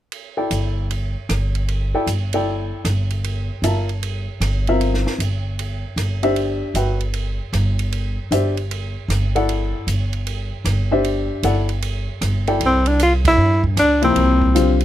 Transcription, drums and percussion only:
0.12 ride soft
0.51 hi-hat pedal soft
0.51 ride medium
0.91 ride soft
1.29 cross-stick soft
1.29 hi-hat pedal soft
1.29 ride soft
1.55 ride soft
1.68 ride soft
2.07 hi-hat pedal medium
2.07 ride soft
2.33 ride soft
2.85 cross-stick soft
2.85 hi-hat pedal soft
2.85 ride soft
3.11 ride soft
3.24 ride soft
3.64 hi-hat pedal soft
3.64 ride medium
3.89 ride soft
4.03 ride soft
4.41 cross-stick soft
4.41 hi-hat pedal soft
4.41 ride medium
4.67 ride soft
4.81 ride soft
4.94 snare soft
5.07 snare soft
5.20 hi-hat pedal soft
5.20 ride medium
5.59 ride soft
5.97 cross-stick soft
5.97 hi-hat pedal soft
5.97 ride soft
6.23 ride soft
6.36 ride soft
6.75 hi-hat pedal medium
6.75 ride medium
7.01 ride soft
7.14 ride soft
7.53 cross-stick soft
7.53 hi-hat pedal soft
7.53 ride soft
7.79 ride soft
7.92 ride soft
8.32 hi-hat pedal soft
8.32 ride medium
8.57 ride soft
8.71 ride soft
9.10 cross-stick soft
9.10 hi-hat pedal soft
9.10 ride medium
9.36 ride soft
9.49 ride soft
9.88 hi-hat pedal medium
9.88 ride medium
10.13 ride soft
10.27 ride soft
10.65 cross-stick soft
10.65 hi-hat pedal soft
10.65 ride medium
11.04 ride soft
11.43 hi-hat pedal soft
11.43 ride medium
11.69 ride soft
11.82 ride medium
12.22 cross-stick medium
12.22 hi-hat pedal soft
12.22 ride medium
12.47 ride soft
12.61 ride medium
12.86 ride soft
13.00 hi-hat pedal medium
13.00 ride medium
13.25 kick medium
13.25 ride medium
13.64 kick soft
13.77 cross-stick medium
13.77 hi-hat pedal soft
13.77 ride medium
14.03 ride soft
14.16 ride medium
14.42 kick medium
14.56 hi-hat pedal medium
14.56 ride medium
14.81 ride soft

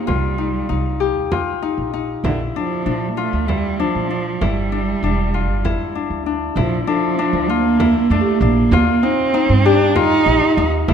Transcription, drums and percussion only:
0.08 frame drum medium
0.40 frame drum soft
1.32 frame drum medium
2.24 frame drum medium
2.56 frame drum soft
3.49 frame drum medium
4.42 frame drum medium
5.03 frame drum soft
5.65 frame drum medium
6.27 frame drum soft
6.57 frame drum medium
7.49 frame drum soft
7.80 frame drum medium
8.72 frame drum medium
9.96 frame drum medium
10.88 frame drum medium

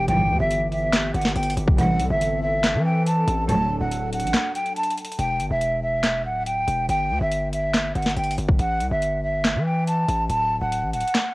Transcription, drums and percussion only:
0.08 closed hi-hat medium
0.51 closed hi-hat medium
0.72 closed hi-hat medium
0.93 snare loud
0.93 clap medium
0.93 closed hi-hat medium
1.15 closed hi-hat soft
1.22 snare medium
1.22 closed hi-hat soft
1.29 closed hi-hat medium
1.36 closed hi-hat medium
1.43 closed hi-hat medium
1.50 closed hi-hat medium
1.57 closed hi-hat medium
1.68 kick medium
1.78 closed hi-hat medium
2.00 closed hi-hat medium
2.21 closed hi-hat medium
2.64 snare loud
2.64 clap medium
2.64 closed hi-hat medium
3.06 closed hi-hat medium
3.27 closed hi-hat medium
3.49 closed hi-hat medium
3.91 closed hi-hat medium
4.12 closed hi-hat medium
4.20 closed hi-hat medium
4.27 closed hi-hat medium
4.34 snare loud
4.34 clap loud
4.34 closed hi-hat medium
4.55 closed hi-hat medium
4.66 closed hi-hat soft
4.76 closed hi-hat soft
4.83 closed hi-hat medium
4.90 closed hi-hat medium
4.98 closed hi-hat medium
5.05 closed hi-hat medium
5.12 closed hi-hat medium
5.19 closed hi-hat medium
5.40 closed hi-hat medium
5.61 closed hi-hat medium
6.04 snare loud
6.04 clap loud
6.04 closed hi-hat medium
6.47 closed hi-hat medium
6.68 closed hi-hat medium
6.89 closed hi-hat medium
7.32 closed hi-hat medium
7.53 closed hi-hat medium
7.74 snare loud
7.74 clap medium
7.74 closed hi-hat medium
7.95 closed hi-hat soft
8.03 snare medium
8.03 closed hi-hat soft
8.10 closed hi-hat medium
8.17 closed hi-hat medium
8.24 closed hi-hat medium
8.31 closed hi-hat medium
8.38 closed hi-hat medium
8.49 kick medium
8.59 closed hi-hat medium
8.80 closed hi-hat medium
9.02 closed hi-hat medium
9.44 snare loud
9.44 clap loud
9.44 closed hi-hat medium
9.87 closed hi-hat medium
10.08 closed hi-hat medium
10.29 closed hi-hat medium
10.72 closed hi-hat medium
10.93 closed hi-hat medium
11.00 closed hi-hat medium
11.07 closed hi-hat medium
11.15 snare loud
11.15 clap medium
11.15 closed hi-hat medium

